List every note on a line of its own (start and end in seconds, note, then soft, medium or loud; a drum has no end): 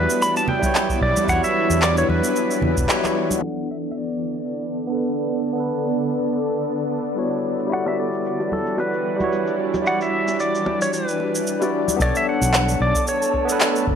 0.00 3.39 E3 medium
0.00 0.59 G3 medium
0.00 3.39 B3 medium
0.00 3.39 D4 medium
0.00 0.61 E4 medium
0.00 3.39 E4 medium
0.00 1.29 F#4 medium
0.00 0.23 B4 medium
0.00 0.66 C#5 medium
0.00 0.61 D5 loud
0.10 shaker medium
0.22 0.37 B5 loud
0.22 shaker soft
0.37 0.49 A5 medium
0.37 shaker soft
0.48 0.98 G5 loud
0.48 low conga medium
0.59 1.23 G3 medium
0.59 1.25 E4 medium
0.59 kick loud
0.59 high conga medium
0.63 1.26 F#3 medium
0.63 1.27 C#5 medium
0.63 shaker medium
0.75 clap medium
0.75 shaker soft
0.89 kick loud
0.89 shaker soft
1.01 1.12 B1 medium
1.01 1.30 D5 medium
1.01 kick medium
1.17 high conga medium
1.17 shaker medium
1.25 1.39 E2 medium
1.25 2.84 G3 medium
1.25 2.86 E4 medium
1.25 kick loud
1.29 2.87 F#4 medium
1.29 2.88 C#5 medium
1.29 1.43 F#5 loud
1.29 shaker medium
1.44 1.84 E5 medium
1.44 shaker soft
1.70 2.04 E2 loud
1.70 shaker medium
1.82 1.96 D5 medium
1.82 clap loud
1.82 shaker medium
1.97 2.10 C#5 medium
1.97 shaker soft
2.09 2.20 E2 loud
2.09 3.17 B4 medium
2.09 high conga medium
2.24 shaker medium
2.36 shaker soft
2.51 shaker soft
2.62 2.73 E2 medium
2.62 low conga medium
2.77 2.86 E1 medium
2.77 kick loud
2.77 shaker medium
2.87 3.39 G3 medium
2.87 3.39 E4 medium
2.87 3.40 F#4 medium
2.87 3.41 C#5 medium
2.87 clap medium
2.87 shaker soft
3.04 clap soft
3.04 high conga medium
3.04 shaker soft
3.31 high conga medium
3.31 shaker medium
3.38 7.40 D3 medium
3.38 4.86 B3 medium
3.38 7.40 B3 medium
3.38 4.87 D4 medium
3.43 7.41 A4 medium
3.43 4.88 A4 medium
3.43 7.41 D5 medium
3.43 4.90 D5 medium
3.43 3.68 F#5 medium
3.71 3.76 E5 medium
3.85 shaker medium
3.91 3.97 E5 medium
3.98 5.27 D5 medium
4.38 shaker medium
4.50 shaker soft
4.65 shaker soft
4.87 5.52 B3 medium
4.87 5.53 D4 medium
4.92 5.54 A4 medium
4.92 5.56 B4 medium
4.92 shaker medium
5.04 shaker soft
5.19 shaker soft
5.45 shaker medium
5.53 7.13 B3 medium
5.53 7.14 D4 medium
5.57 7.15 A4 medium
5.57 7.16 B4 medium
5.57 shaker soft
5.72 shaker soft
5.99 shaker medium
6.11 shaker soft
6.25 shaker soft
6.52 shaker medium
6.64 shaker soft
6.79 shaker soft
7.06 shaker medium
7.15 7.66 G3 medium
7.15 7.68 E4 medium
7.15 7.68 F#4 medium
7.15 7.69 C#5 medium
7.15 shaker soft
7.32 shaker soft
7.44 11.96 E3 medium
7.44 11.96 G3 medium
7.44 11.96 D4 medium
7.44 9.57 F#4 medium
7.59 shaker medium
7.67 9.14 G3 medium
7.67 9.16 E4 medium
7.71 9.17 F#4 medium
7.71 9.18 D5 medium
7.71 7.87 F#5 loud
7.71 shaker soft
7.86 7.98 E5 medium
7.86 high bongo medium
7.86 shaker soft
8.00 8.54 D5 medium
8.13 shaker medium
8.25 shaker medium
8.40 high bongo soft
8.40 shaker soft
8.52 8.77 A4 medium
8.52 high conga medium
8.67 shaker medium
8.78 9.55 B4 medium
8.78 high bongo medium
8.78 shaker soft
8.94 shaker soft
9.16 9.81 G3 medium
9.16 9.82 E4 medium
9.16 high conga medium
9.16 shaker medium
9.21 9.83 F#4 medium
9.21 9.85 C#5 medium
9.32 high bongo soft
9.32 shaker soft
9.47 shaker soft
9.74 high bongo medium
9.74 high conga medium
9.74 shaker medium
9.82 11.42 G3 medium
9.82 11.43 E4 medium
9.86 11.44 F#4 medium
9.86 11.45 D5 medium
9.86 10.02 F#5 loud
9.86 shaker medium
10.01 10.40 E5 medium
10.01 shaker soft
10.28 high bongo soft
10.28 shaker medium
10.40 10.82 D5 medium
10.40 shaker soft
10.55 shaker soft
10.66 high bongo medium
10.66 high conga medium
10.82 10.93 C#5 medium
10.82 shaker medium
10.93 11.70 B4 medium
10.93 shaker soft
11.08 shaker soft
11.20 high bongo soft
11.35 shaker medium
11.47 shaker soft
11.59 11.96 G3 medium
11.59 11.97 E4 medium
11.59 11.97 F#4 medium
11.59 11.98 D5 medium
11.59 high bongo medium
11.59 shaker soft
11.88 high conga medium
11.88 shaker medium
11.96 12.11 B1 medium
11.96 13.95 A3 medium
11.96 13.43 B3 medium
11.96 13.95 B3 medium
11.96 13.44 D4 medium
11.96 13.95 A4 medium
11.96 13.95 A5 medium
11.96 kick loud
12.00 13.95 D4 medium
12.00 13.46 A4 medium
12.00 13.47 C#5 loud
12.00 12.16 D5 loud
12.00 shaker medium
12.15 12.28 E5 medium
12.15 shaker soft
12.29 12.83 F#5 loud
12.42 12.75 B1 loud
12.42 shaker medium
12.54 clap loud
12.54 shaker medium
12.69 shaker soft
12.80 12.91 B1 loud
12.80 13.06 D5 medium
12.95 kick loud
12.95 shaker medium
13.07 13.84 C#5 medium
13.07 shaker soft
13.22 shaker soft
13.34 kick medium
13.45 13.95 B3 medium
13.45 13.95 D4 medium
13.49 13.95 A4 medium
13.49 13.95 B4 medium
13.49 shaker medium
13.61 clap loud
13.61 shaker medium
13.76 shaker soft
13.87 13.95 F#1 medium
13.87 kick loud